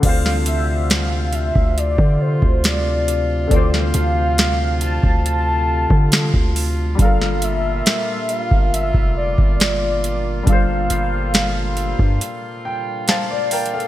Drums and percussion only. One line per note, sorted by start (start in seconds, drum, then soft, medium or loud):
0.03 kick loud
0.03 closed hi-hat medium
0.03 crash loud
0.26 snare medium
0.46 closed hi-hat medium
0.90 snare loud
0.90 closed hi-hat medium
1.33 closed hi-hat medium
1.55 kick medium
1.78 closed hi-hat medium
1.98 kick loud
2.42 kick loud
2.64 snare loud
2.64 closed hi-hat medium
3.08 closed hi-hat medium
3.51 kick loud
3.51 closed hi-hat medium
3.74 snare medium
3.94 closed hi-hat medium
4.38 snare loud
4.38 closed hi-hat medium
4.81 closed hi-hat medium
5.03 kick loud
5.26 closed hi-hat medium
5.90 kick loud
6.12 snare loud
6.12 closed hi-hat medium
6.34 kick medium
6.56 open hi-hat medium
6.99 kick loud
6.99 closed hi-hat medium
7.22 snare medium
7.42 closed hi-hat medium
7.86 snare loud
7.86 closed hi-hat medium
8.29 closed hi-hat medium
8.51 kick loud
8.74 closed hi-hat medium
8.94 kick medium
9.38 kick loud
9.60 snare loud
9.60 closed hi-hat medium
10.04 closed hi-hat medium
10.47 kick loud
10.47 closed hi-hat medium
10.90 closed hi-hat medium
11.34 snare loud
11.34 closed hi-hat medium
11.77 closed hi-hat medium
11.99 kick loud
12.21 closed hi-hat medium
13.08 snare loud
13.08 closed hi-hat medium
13.51 closed hi-hat medium
13.51 open hi-hat medium
13.66 closed hi-hat medium
13.80 closed hi-hat soft